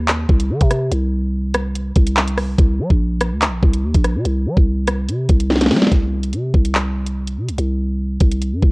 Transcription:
Already playing: D#2
0.08 clap, closed hi-hat
0.29 C2, kick
0.40 closed hi-hat
0.50 D#3
0.61 C3, kick, closed hi-hat
0.71 cross-stick, closed hi-hat
0.92 C2, closed hi-hat
1.54 cross-stick, closed hi-hat
1.75 closed hi-hat
1.96 C2, kick, closed hi-hat
2.07 closed hi-hat
2.17 clap
2.28 closed hi-hat
2.38 cross-stick, open hi-hat
2.58 C2, kick, closed hi-hat
2.79 G3
2.90 A#1, kick
3.21 cross-stick, closed hi-hat
3.32 D2
3.42 clap, closed hi-hat
3.47 A#1
3.63 C2, kick
3.73 closed hi-hat
3.83 D#2
3.94 A#1, kick, closed hi-hat
4.04 cross-stick, closed hi-hat
4.15 C3
4.25 C2, closed hi-hat
4.46 G3
4.57 C2, kick
4.87 cross-stick, closed hi-hat
5.08 C3, closed hi-hat
5.29 C2, kick, closed hi-hat
5.40 closed hi-hat
5.50 snare
5.56 snare
5.61 snare, closed hi-hat
5.66 snare
5.71 G3, snare, open hi-hat
5.76 snare
5.82 snare
5.87 snare
5.92 C2, kick, closed hi-hat
6.23 closed hi-hat
6.33 C3, closed hi-hat
6.54 C2, kick
6.65 closed hi-hat
6.75 clap
7.07 closed hi-hat
7.28 closed hi-hat
7.37 C3
7.49 C2, closed hi-hat
7.58 C2, closed hi-hat
8.21 C2, kick, closed hi-hat
8.32 closed hi-hat
8.42 closed hi-hat
8.53 G2
8.63 C2, kick

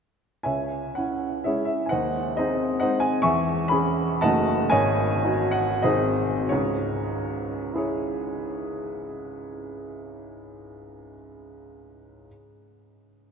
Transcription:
0.43 C#2 C#5 E5 G#5
0.95 C#4 E4 F#5
1.44 G#3 C#4 E4 G#4 C#5 E5
1.65 E5
1.86 F#5 G#5
1.91 D#2 C5 D#5
2.37 C4 D#4 G#4 C5 D#5
2.80 G#3 C4 D#4 C5 D#5 F#5
3.00 G#5
3.22 E2 E5 G#5 C#6
3.68 C#4 G#4 B5
4.21 F#1 A3 D#4 F#4 D#5 F#5 A5
4.70 G#1 C#5 D#5 G#5
5.24 D#4 F#4
5.51 F#5
5.82 G#1 C4 D#4 F#4 G#4 C5 D#5
6.49 C#2 G#2 C#5
7.73 E4 G#4
7.78 C#5

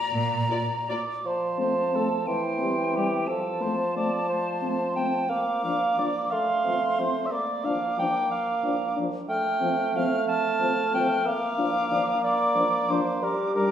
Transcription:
Already playing: D5 A#5
0.13 A#2
0.50 A#3 F4 D5
0.89 A#3 F4 D5
1.25 F3 C5 A5
1.58 A3 C4 C5
1.94 A3 C4 A4
2.27 E3 C5 G5
2.59 G3 C4
2.94 G3 C4 G4
3.27 F3 A4 A5
3.61 A3 C4 C5
3.96 A3 C4 D5
4.29 C5
4.62 A3 C4
4.96 A3 C4 G5
5.29 A#3 F5 D6
5.63 F3 D4 F5
5.98 F3 D4 D5
6.31 A3 F5 C6
6.65 F3 C4
6.99 F3 C4 C5
7.26 E5
7.31 A#3 D5 D6
7.64 F3 D4 F5
7.98 F3 D4 G5
8.31 F5
8.63 F3 D4
8.97 F3 D4
9.29 A3 G5 F6
9.61 F3 C4
9.96 F3 C4 F5 F6
10.28 A5 F6
10.60 F3 C4
10.94 F3 C4 G5
11.26 A#3 F5 D6
11.58 F3 D4
11.91 F3 D4
12.23 D5 D6
12.54 F3 D4
12.90 F3 D4 C5
13.23 G3 A#4 D6
13.55 G3 D4 A#4 D6

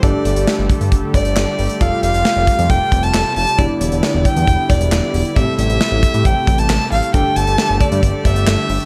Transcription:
Already playing: G3 A3 G4
0.03 G1 D3 D4 G4 A4 D5, kick, closed hi-hat
0.25 G1, closed hi-hat
0.36 G1, closed hi-hat
0.47 snare
0.59 G1
0.70 kick, closed hi-hat
0.81 G2, closed hi-hat
0.92 G1, kick, closed hi-hat
1.14 G1 D5, kick, closed hi-hat
1.25 G1, closed hi-hat
1.36 G1, snare, clap
1.59 G1, open hi-hat
1.70 closed hi-hat
1.81 F1 C3 F4 G4 A4 F5, kick, closed hi-hat
2.03 F1 F5, closed hi-hat
2.14 F1, closed hi-hat
2.25 snare
2.37 F1
2.47 kick, closed hi-hat
2.59 F2, closed hi-hat
2.70 F1 G5, kick, closed hi-hat
2.92 F1, kick, closed hi-hat
3.03 F1 A5, closed hi-hat
3.14 F1 F4 G4 A4, snare, clap
3.36 F1 A5, open hi-hat
3.47 closed hi-hat
3.58 E1 D3 B3 D4 E4 G4 D5, kick, closed hi-hat
3.81 E1 D5, closed hi-hat
3.92 E1, closed hi-hat
4.03 snare
4.14 E1
4.25 G5, kick, closed hi-hat
4.37 E2, closed hi-hat
4.47 E1, kick, closed hi-hat
4.70 E1 D5, kick, closed hi-hat
4.81 E1, closed hi-hat
4.92 E1, snare, clap
5.14 E1, open hi-hat
5.25 closed hi-hat
5.36 A1 C3 A3 C4 G4 A4 E5, kick, closed hi-hat
5.58 A1 E5, closed hi-hat
5.70 A1, closed hi-hat
5.81 snare
5.92 A1
6.03 kick, closed hi-hat
6.14 A2, closed hi-hat
6.25 A1 G5, kick, closed hi-hat
6.47 A1, kick, closed hi-hat
6.58 A1 A5, closed hi-hat
6.69 A1, snare, clap
6.92 A1 F5, open hi-hat
7.03 closed hi-hat
7.14 G1 D3 D4 G4 A4 G5, kick, closed hi-hat
7.36 G1 A5, closed hi-hat
7.47 G1, closed hi-hat
7.58 snare
7.69 G1
7.81 D5, kick, closed hi-hat
7.92 G2, closed hi-hat
8.03 G1, kick, closed hi-hat
8.25 G1 E5, kick, closed hi-hat
8.36 G1, closed hi-hat
8.47 G1, snare, clap
8.69 G1, open hi-hat
8.80 closed hi-hat

